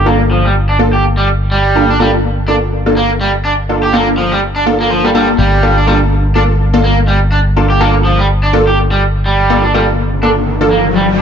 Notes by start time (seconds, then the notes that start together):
Already playing: G1
0.06 A#3 D4 F4 A4
0.31 F3
0.45 G3
0.69 D4
0.79 A#3 D4 F4 A4
0.93 G4
1.17 G3
1.51 G3
1.75 A#3 D4 F4 A4
1.90 D4
2.00 G3 A#3 D4 F4 A4
2.48 A#3 D4 F4 A4
2.86 A#3 D4 F4 A4
2.97 A#3
3.21 G3
3.45 D4
3.69 A#3 D4 F4 A4
3.83 G4
3.93 A#3 D4 F4 A4
4.18 F3
4.32 G3
4.56 D4
4.66 A#3 D4 F4 A4
4.80 A#3
4.90 F3
5.04 G3 A#3 D4 F4 A4
5.14 G3 A#3 D4 F4 A4
5.39 G1 G3
5.63 A#3 D4 F4 A4
5.77 D4
5.87 G3 A#3 D4 F4 A4
6.35 A#3 D4 F4 A4
6.73 A#3 D4 F4 A4
6.84 A#3
7.08 G3
7.32 D4
7.56 A#3 D4 F4 A4
7.70 G4
7.80 A#3 D4 F4 A4
8.05 F3
8.19 G3
8.43 D4
8.53 A#3 D4 F4 A4
8.67 G4
8.91 G3
9.26 G3, riser
9.50 A#3 D4 F4 A4
9.64 D4
9.74 G3 A#3 D4 F4 A4
10.23 A#3 D4 F4 A4
10.61 A#3 D4 F4 A4
10.71 A#3
10.96 G3